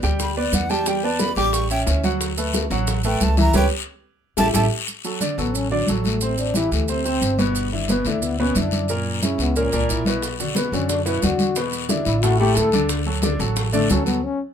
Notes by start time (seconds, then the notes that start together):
0.03 D2 G3 G4 G5, high bongo, high conga, short guiro, maracas
0.20 B5, high bongo, high conga, low conga, long guiro, maracas
0.36 B3 B4 D5, high conga
0.52 E2 F#5, high bongo, low bongo, high conga, short guiro, maracas
0.69 G3 G4 G5 A5, high bongo, high conga, short guiro, maracas
0.86 G3 G4 G5, high bongo, high conga, long guiro, maracas
1.03 B3 B4 D5 A5, high bongo, high conga
1.19 B5, high bongo, high conga, short guiro, maracas
1.36 A1 G3 G4 G5 D6, high bongo, high conga, short guiro, maracas
1.53 C#6, high bongo, high conga, long guiro, maracas
1.70 C#4 C#5 E5 G5, high conga, maracas
1.87 D2 C#4 C#5 E5, high bongo, low bongo, high conga, short guiro, maracas
2.03 F#3 F#4 F#5, high bongo, high conga, short guiro, maracas
2.21 high bongo, long guiro, maracas
2.37 A3 A4 B4, high bongo, high conga, maracas
2.54 high bongo, high conga, short guiro, maracas
2.70 A1 F#3 F#4 F#5, high bongo, short guiro, maracas
2.87 high bongo, high conga, low conga, long guiro, maracas
3.04 A3 A4 B4 G5, high conga, low conga, maracas
3.20 C#2 A5, high bongo, low bongo, high conga, short guiro, maracas
3.37 E3 E4 E5 A#5, high bongo, high conga, short guiro, maracas
3.54 C#2 G4 B4 C#5 G5, high bongo, high conga, long guiro, maracas
4.37 A1 E4 G4 A4 A5, high bongo, high conga, long guiro, maracas
4.54 A1 E4 G4 A4 A5, high bongo, high conga, long guiro, maracas
4.88 high conga, long guiro, maracas
5.04 F#3 F#4 A4, high conga, maracas
5.21 D3 D4 D5, high conga, short guiro, maracas
5.38 A1 F#3 B3 F#4 A4, short guiro, maracas
5.54 C#4, high conga, low conga, long guiro, maracas
5.70 D3 F#3 D4 D5, high conga, low conga
5.87 A1 F#3 F#4 A4, high conga, short guiro, maracas
6.04 A3, high conga, short guiro, maracas
6.21 C3 C4 C5, long guiro, maracas
6.37 D4, high conga, maracas
6.54 E3 E4 G4, high conga, short guiro, maracas
6.71 D2 A3, high conga, short guiro, maracas
6.88 C3 C4 C5, high conga, long guiro, maracas
7.05 C3 C4 C5, high conga, maracas
7.21 G1, high conga, short guiro, maracas
7.38 B2 B3 B4, high conga, short guiro, maracas
7.55 long guiro, maracas
7.72 D3 D4 E4, high conga
7.88 B2 B3 B4, high conga, short guiro, maracas
8.05 D2 D3 A3 D4 E4, high conga, short guiro, maracas
8.22 B3, high conga, low conga, long guiro, maracas
8.39 B2 B3 C#4 B4, high conga
8.55 F#2 D3 D4 E4, high conga, short guiro, maracas
8.71 high conga, short guiro, maracas
8.88 A#2 A#3 A#4, long guiro, maracas
9.06 high conga
9.22 C#3 C#4 E4, high conga, short guiro, maracas
9.38 C#2 B3, high conga, short guiro, maracas
9.55 A#2 A#3 C#4 A#4, high conga, long guiro, maracas
9.72 C#2 A#2 A#3 D4 A#4, high conga, maracas
9.88 B1 E4, high conga, short guiro, maracas
10.05 B2 B3 B4, high conga, short guiro, maracas
10.22 high bongo, high conga, long guiro, maracas
10.38 D3 D4 F#4, high bongo, high conga, maracas
10.55 B2 B3 B4, high bongo, high conga, short guiro, maracas
10.72 F#2 D3 C#4 D4 F#4, high bongo, high conga, short guiro, maracas
10.89 D4, high bongo, high conga, low conga, long guiro, maracas
11.06 B2 B3 E4 B4, high conga, maracas
11.22 E2 D3 D4 F#4, high bongo, low bongo, high conga, short guiro, maracas
11.39 high bongo, high conga, short guiro, maracas
11.56 B2 B3 B4, high bongo, high conga, long guiro, maracas
11.72 high bongo, high conga, maracas
11.89 D3 D4 E4, high bongo, high conga, short guiro, maracas
12.05 A1 E4, high bongo, high conga, short guiro, maracas
12.22 A2 A3 F#4 A4, high bongo, high conga, long guiro, maracas
12.39 A2 A3 G4 A4, high conga
12.55 D2 A4, high bongo, low bongo, high conga, short guiro, maracas
12.72 D3 D4 D5, high conga, short guiro, maracas
12.89 high bongo, long guiro, maracas
13.06 F#3 F#4 A4, high bongo, high conga
13.22 D3 D4 D5, high bongo, high conga, short guiro, maracas
13.39 A1 F#3 F#4 A4, high bongo, short guiro, maracas
13.56 high bongo, high conga, low conga, long guiro, maracas
13.73 D3 A3 D4 D5, high conga, low conga, maracas
13.89 D2 F#3 C#4 F#4 A4, high bongo, low bongo, high conga, short guiro, maracas
14.06 B3, high bongo, high conga, short guiro, maracas
14.24 C#4